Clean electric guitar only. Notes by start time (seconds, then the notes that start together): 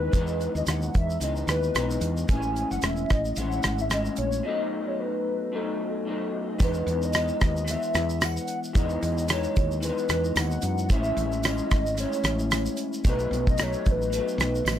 Already playing: E3 G#3 B3 D#4
0.12 E3 G#3 B3
0.17 D#4
1.20 E3 G#3 B3 D#4
1.74 E3 G#3 B3 D#4
2.27 A2 G#3
2.32 C#4 E4
3.37 A2 G#3 C#4 E4
3.90 A2 G#3 C#4
3.94 E4
4.43 B2 F#3 A3
4.49 D#4
5.52 B2 F#3 A3 D#4
6.05 B2 F#3 A3 D#4
6.59 E3 G#3 B3 D#4
7.12 E3 G#3 B3 D#4
7.64 E3 G#3
7.71 B3
8.73 E3 G#3 B3 D#4
9.28 E3 G#3 B3 D#4
9.80 E3 G#3
9.86 B3 D#4
10.89 A2 G#3 C#4 E4
11.43 A2 G#3 C#4 E4
11.95 A2 G#3
12.01 C#4 E4
13.05 B2 F#3 A3 D#4
13.57 B2 F#3 A3 D#4
14.10 B2 F#3
14.16 A3 D#4